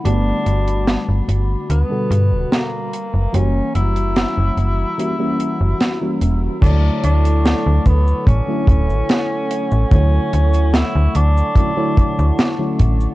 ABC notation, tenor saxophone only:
X:1
M:4/4
L:1/8
Q:1/4=73
K:D
V:1 name="Tenor saxophone"
D3 z B,2 _B,2 | C E6 z | D D2 B, C4 | C2 E D4 z |]